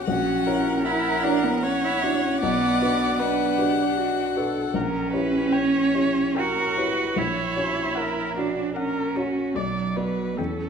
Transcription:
0.05 0.45 A#1 medium
0.05 0.86 C#4 medium
0.05 0.48 F#4 medium
0.05 0.82 F#5 medium
0.47 1.20 E4 soft
0.47 1.20 F#4 soft
0.47 1.64 A#4 medium
0.47 1.20 C#5 soft
0.84 1.24 E4 medium
0.84 1.60 F#5 medium
1.23 1.45 D4 medium
1.23 1.98 E4 soft
1.23 1.98 F#4 soft
1.23 1.98 C#5 soft
1.44 1.65 B3 medium
1.61 1.86 C#4 medium
1.61 2.41 C#5 medium
1.61 2.39 F#5 medium
1.84 2.04 E4 medium
2.03 2.22 D4 medium
2.03 2.38 E4 soft
2.03 2.38 F#4 soft
2.03 2.39 C#5 soft
2.24 2.42 C#4 medium
2.40 2.80 B1 medium
2.40 3.22 B3 medium
2.40 3.21 D5 medium
2.40 3.17 F#5 medium
2.81 3.54 D4 soft
2.81 3.54 F#4 soft
2.81 3.54 B4 soft
3.19 4.37 D4 medium
3.19 3.59 B4 medium
3.19 4.71 F#5 medium
3.58 4.32 D4 soft
3.58 4.33 F#4 soft
3.58 3.98 G4 medium
3.58 4.33 B4 soft
3.97 4.38 F#4 medium
4.36 4.70 D4 soft
4.36 4.71 F#4 soft
4.36 4.77 A4 medium
4.36 4.71 B4 soft
4.74 5.12 A#1 soft
4.74 6.40 C#4 medium
4.74 5.13 A#4 soft
5.13 5.90 E4 soft
5.13 5.91 G4 soft
5.13 5.55 B4 medium
5.13 5.91 C#5 soft
5.52 6.37 C#5 medium
5.52 6.16 G5 medium
5.94 6.73 E4 soft
5.94 6.73 G4 soft
5.94 6.73 C#5 soft
6.36 7.19 F#4 medium
6.36 6.80 A#4 medium
6.36 6.96 G5 soft
6.77 7.12 E4 soft
6.77 7.13 G4 soft
6.77 7.19 B4 medium
6.77 7.13 C#5 soft
7.16 7.55 A#1 soft
7.16 8.36 E4 medium
7.16 7.98 C#5 medium
7.56 8.32 C#4 soft
7.56 8.32 F#4 soft
7.56 8.33 C#5 soft
7.95 8.38 A#4 medium
7.95 8.56 F#5 soft
8.37 9.12 C#4 soft
8.37 8.76 D4 medium
8.37 8.75 F#4 soft
8.37 9.13 F#4 soft
8.37 9.13 C#5 soft
8.76 9.57 C#4 medium
8.76 9.17 A#4 medium
8.76 9.36 F#5 soft
9.16 9.52 C#4 soft
9.16 9.57 F#4 soft
9.16 9.52 F#4 soft
9.16 9.53 C#5 soft
9.55 9.95 B1 soft
9.55 10.39 F#3 medium
9.55 9.98 D5 soft
9.55 10.17 D5 soft
9.96 10.34 B3 soft
9.96 10.34 F#4 soft
9.96 10.39 B4 soft
9.96 10.35 D5 soft
10.38 10.69 E2 soft
10.38 10.69 C#4 medium
10.38 10.69 A4 soft
10.38 10.69 G5 soft

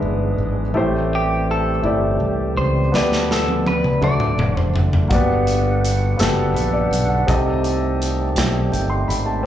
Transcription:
0.00 0.35 G1 medium
0.00 0.76 G#2 soft
0.00 2.89 E3 soft
0.00 0.72 G#3 soft
0.00 0.76 G#3 medium
0.00 0.72 B3 soft
0.00 0.71 D4 soft
0.00 0.76 D4 medium
0.00 0.75 E4 medium
0.00 0.72 G#4 medium
0.00 0.76 B4 medium
0.38 0.72 G#1 medium
0.74 1.79 A1 medium
0.74 1.80 A2 medium
0.74 3.98 G3 soft
0.74 2.90 A3 soft
0.74 1.70 A3 medium
0.74 2.91 C4 soft
0.74 1.70 E4 medium
0.74 2.90 G4 medium
0.74 1.70 G4 medium
0.74 1.71 C5 medium
1.15 1.47 G4 medium
1.51 2.57 A4 medium
1.82 2.17 G1 medium
1.82 2.78 A3 medium
1.82 2.79 E4 medium
1.82 2.80 G4 medium
1.82 2.80 D5 medium
2.20 2.53 C2 medium
2.57 2.90 C#2 medium
2.57 2.94 C5 medium
2.92 3.99 D2 medium
2.92 3.98 D3 soft
2.92 3.88 B3 medium
2.92 4.01 B3 soft
2.92 5.09 D4 soft
2.92 3.89 D4 soft
2.92 3.89 G4 soft
2.92 3.31 B4 medium
2.92 3.89 D5 medium
2.92 snare soft
3.12 snare soft
3.31 3.64 A4 medium
3.31 snare soft
3.48 high tom soft
3.67 4.03 B4 medium
3.67 high tom medium
3.84 mid tom soft
4.01 4.35 D2 medium
4.01 5.07 D3 medium
4.01 4.97 A3 soft
4.01 5.10 A3 soft
4.01 4.97 D4 soft
4.01 4.98 F#4 soft
4.01 4.60 D5 medium
4.01 4.98 D5 medium
4.01 mid tom medium
4.20 mid tom medium
4.38 4.71 F1 medium
4.38 mid tom medium
4.57 4.80 C5 medium
4.57 floor tom medium
4.73 5.07 F#1 medium
4.73 floor tom medium
4.93 floor tom medium
5.08 6.16 G1 medium
5.08 6.15 G2 soft
5.08 7.26 D3 soft
5.08 9.41 G3 soft
5.08 5.16 A#3 medium
5.08 7.26 B3 soft
5.08 6.05 F#4 medium
5.08 6.06 G4 medium
5.08 6.07 D5 medium
5.08 7.26 F#5 medium
5.08 kick medium
5.08 closed hi-hat medium
5.15 6.08 B3 medium
5.47 closed hi-hat soft
5.85 closed hi-hat medium
6.17 6.53 F#1 medium
6.17 7.14 B3 medium
6.17 7.14 F#4 medium
6.17 7.15 G4 medium
6.17 7.15 A4 medium
6.17 snare medium
6.17 closed hi-hat medium
6.54 6.88 A#1 medium
6.54 6.72 B4 medium
6.54 closed hi-hat soft
6.73 7.08 D5 medium
6.91 7.25 B1 medium
6.91 closed hi-hat medium
7.09 7.44 F#5 soft
7.26 8.33 C2 medium
7.26 8.33 C3 medium
7.26 9.43 D#3 medium
7.26 9.46 A3 soft
7.26 8.22 C4 medium
7.26 9.46 C4 soft
7.26 8.23 G4 medium
7.26 9.46 G4 medium
7.26 8.24 A4 medium
7.26 8.24 D#5 medium
7.26 kick loud
7.26 closed hi-hat medium
7.64 closed hi-hat soft
8.02 closed hi-hat medium
8.36 8.70 B1 medium
8.36 snare medium
8.36 closed hi-hat medium
8.72 9.06 G1 medium
8.72 8.90 G5 soft
8.72 closed hi-hat soft
8.90 9.08 C6 medium
9.08 9.42 G#1 medium
9.08 9.26 B5 soft
9.08 closed hi-hat medium
9.26 9.46 A5 soft

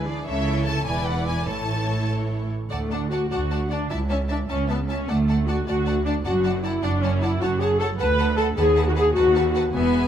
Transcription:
0.00 0.17 D2 medium
0.00 0.17 D3 medium
0.07 0.25 E3 soft
0.07 0.27 D4 soft
0.07 0.27 G#4 soft
0.07 0.27 D5 soft
0.26 0.83 C#2 soft
0.26 0.83 C#3 medium
0.26 0.83 E3 soft
0.26 0.83 E4 soft
0.26 0.83 A4 soft
0.26 0.83 C#5 soft
0.26 0.64 E5 medium
0.67 0.86 A5 medium
0.85 1.47 E1 soft
0.85 1.47 E2 medium
0.85 1.46 E3 soft
0.85 1.46 E4 soft
0.85 1.48 B4 soft
0.85 1.48 D5 soft
0.85 1.06 G#5 medium
1.07 1.27 F#5 medium
1.28 1.48 G#5 medium
1.47 2.51 A1 soft
1.47 2.50 A2 soft
1.47 2.48 E3 soft
1.47 2.48 E4 soft
1.47 2.50 A4 soft
1.47 2.50 C#5 soft
1.47 2.08 A5 medium
2.70 3.24 D2 medium
2.70 3.24 D2 soft
2.70 2.89 A3 medium
2.70 2.79 D5 soft
2.70 2.79 F#5 soft
2.70 2.79 A5 soft
2.91 3.11 D4 medium
2.91 2.99 D5 soft
2.91 2.99 F#5 soft
2.91 2.99 A5 soft
3.11 3.30 F#4 medium
3.11 3.19 D5 soft
3.11 3.19 F#5 soft
3.11 3.19 A5 soft
3.31 3.83 D2 medium
3.31 3.84 D2 soft
3.31 3.70 F#4 medium
3.31 3.39 D5 soft
3.31 3.39 F#5 soft
3.31 3.39 A5 soft
3.51 3.59 D5 soft
3.51 3.59 F#5 soft
3.51 3.59 A5 soft
3.70 3.90 D4 medium
3.70 3.78 D5 soft
3.70 3.78 F#5 soft
3.70 3.79 A5 soft
3.90 4.43 C#2 medium
3.90 4.43 C#2 soft
3.90 3.98 E4 medium
3.90 3.98 E5 soft
3.90 3.98 A5 soft
4.09 4.18 C#4 medium
4.09 4.18 E5 soft
4.09 4.17 A5 soft
4.09 4.18 A5 soft
4.29 4.38 D4 medium
4.29 4.37 E5 soft
4.29 4.37 A5 soft
4.49 5.02 C#2 soft
4.49 5.02 C#2 medium
4.49 4.69 C#4 medium
4.49 4.57 E5 soft
4.49 4.57 A5 soft
4.69 4.77 B3 medium
4.69 4.77 E5 soft
4.69 4.77 A5 soft
4.89 5.08 C#4 medium
4.89 4.97 E5 soft
4.89 4.97 A5 soft
5.09 5.60 D2 medium
5.09 5.61 D2 soft
5.09 5.48 A3 medium
5.09 5.17 D5 soft
5.09 5.17 F#5 soft
5.09 5.17 A5 soft
5.28 5.36 D5 soft
5.28 5.36 F#5 soft
5.28 5.36 A5 soft
5.48 5.66 F#4 medium
5.48 5.56 D5 soft
5.48 5.56 F#5 soft
5.48 5.56 A5 soft
5.67 6.18 D2 medium
5.67 6.19 D2 medium
5.67 6.05 F#4 medium
5.67 5.76 D5 soft
5.67 5.76 F#5 soft
5.67 5.75 A5 soft
5.86 5.94 D5 soft
5.86 5.94 F#5 soft
5.86 5.94 A5 soft
6.05 6.13 D4 medium
6.05 6.14 D5 soft
6.05 6.14 F#5 soft
6.05 6.14 A5 soft
6.24 6.76 F#1 medium
6.24 6.76 F#2 medium
6.24 6.63 F#4 medium
6.24 6.33 D5 soft
6.24 6.33 F#5 soft
6.24 6.33 A5 soft
6.44 6.52 D5 soft
6.44 6.52 F#5 soft
6.44 6.52 A5 soft
6.63 6.82 E4 medium
6.63 6.71 D5 soft
6.63 6.72 F#5 soft
6.63 6.72 A5 soft
6.83 7.35 F#1 medium
6.83 7.34 F#2 medium
6.83 7.02 D4 medium
6.83 6.91 D5 soft
6.83 6.91 F#5 soft
6.83 6.91 A5 soft
7.02 7.22 C#4 medium
7.02 7.11 D5 soft
7.02 7.11 F#5 soft
7.02 7.11 A5 soft
7.21 7.41 E4 medium
7.21 7.30 D5 soft
7.21 7.30 F#5 soft
7.21 7.30 A5 soft
7.41 7.93 F#1 medium
7.41 7.93 F#2 medium
7.41 7.61 F#4 medium
7.41 7.49 C#5 medium
7.41 7.49 F#5 soft
7.41 7.49 A5 medium
7.60 7.80 G#4 medium
7.60 7.69 C#5 soft
7.60 7.69 F#5 soft
7.60 7.69 A5 soft
7.80 7.87 A4 medium
7.80 7.88 C#5 soft
7.80 7.88 F#5 soft
7.80 7.88 A5 soft
7.99 8.51 D2 medium
7.99 8.07 B4 soft
7.99 8.37 B4 medium
7.99 8.07 F#5 medium
7.99 8.07 A5 medium
8.18 8.27 B4 soft
8.18 8.26 F#5 soft
8.18 8.26 A5 soft
8.38 8.46 A4 medium
8.38 8.46 B4 soft
8.38 8.46 F#5 soft
8.38 8.46 A5 medium
8.57 9.09 D#2 medium
8.57 8.86 G#4 medium
8.57 8.65 B4 medium
8.57 8.65 F#5 medium
8.57 8.65 A5 medium
8.77 8.85 B4 soft
8.77 8.85 F#5 soft
8.77 8.85 A5 medium
8.87 8.91 F#4 medium
8.96 9.15 G#4 medium
8.96 9.04 B4 soft
8.96 9.04 F#5 soft
8.96 9.04 A5 soft
9.16 9.68 D#2 medium
9.16 9.54 F#4 medium
9.16 9.24 B4 medium
9.16 9.24 F#5 medium
9.16 9.24 A5 medium
9.35 9.44 B4 soft
9.35 9.44 F#5 soft
9.35 9.43 A5 medium
9.55 9.63 B4 soft
9.55 9.63 F#5 soft
9.55 9.63 A5 medium
9.74 10.08 E1 medium
9.74 10.08 E2 medium
9.74 10.08 B3 medium
9.74 10.08 B4 medium
9.74 10.08 E5 medium
9.74 10.08 G#5 medium

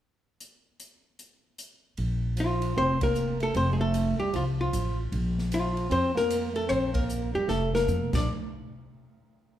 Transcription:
0.40 closed hi-hat medium
0.80 closed hi-hat soft
1.19 closed hi-hat soft
1.58 closed hi-hat medium
1.97 2.73 A#1 medium
1.97 ride soft
2.37 2.74 F3 medium
2.37 2.76 F4 medium
2.37 hi-hat pedal soft
2.37 ride medium
2.62 ride medium
2.76 3.51 F1 medium
2.76 3.00 C4 medium
2.76 3.01 C5 loud
3.01 3.38 A#3 medium
3.01 3.42 A#4 medium
3.01 kick medium
3.01 ride medium
3.15 hi-hat pedal medium
3.40 3.53 A3 medium
3.40 3.56 A4 medium
3.40 ride soft
3.54 4.16 F1 medium
3.54 3.70 C4 medium
3.54 3.71 C5 medium
3.54 ride soft
3.70 3.78 G#3 medium
3.70 3.80 G#4 medium
3.79 4.17 A3 medium
3.79 4.18 A4 medium
3.94 hi-hat pedal medium
3.94 ride medium
4.18 4.32 G3 medium
4.18 4.33 G4 medium
4.18 muted upright bass stroke soft
4.33 4.71 C2 medium
4.33 4.45 F3 medium
4.33 4.42 F4 medium
4.33 ride medium
4.59 4.96 F3 medium
4.59 4.97 F4 medium
4.73 5.10 A1 medium
4.73 hi-hat pedal medium
4.73 ride medium
5.12 5.88 A#1 medium
5.12 ride soft
5.38 snare soft
5.51 5.89 F3 medium
5.51 5.94 F4 medium
5.51 hi-hat pedal medium
5.51 ride medium
5.77 ride soft
5.89 6.66 F2 medium
5.89 6.14 C4 loud
5.89 6.15 C5 medium
5.89 ride medium
6.15 6.53 A#3 medium
6.15 6.54 A#4 loud
6.15 snare soft
6.30 hi-hat pedal medium
6.30 ride medium
6.53 6.69 A3 medium
6.53 6.69 A4 medium
6.53 ride soft
6.68 7.31 A#1 medium
6.68 6.95 C4 medium
6.68 6.94 C5 medium
6.68 ride medium
6.93 7.33 A#3 medium
6.93 7.34 A#4 medium
6.93 kick medium
6.93 ride medium
7.09 hi-hat pedal medium
7.33 7.47 F2 medium
7.33 7.46 G3 medium
7.33 7.48 G4 medium
7.47 7.85 F1 medium
7.47 7.71 A3 medium
7.47 7.73 A4 medium
7.47 snare soft
7.73 8.10 A#3 medium
7.73 8.11 A#4 medium
7.73 snare medium
7.87 8.11 F2 medium
7.87 hi-hat pedal soft
7.87 mid tom medium
8.13 8.27 A#1 medium
8.13 8.27 D4 medium
8.13 8.28 D5 medium
8.13 kick medium
8.13 snare medium
8.13 crash medium

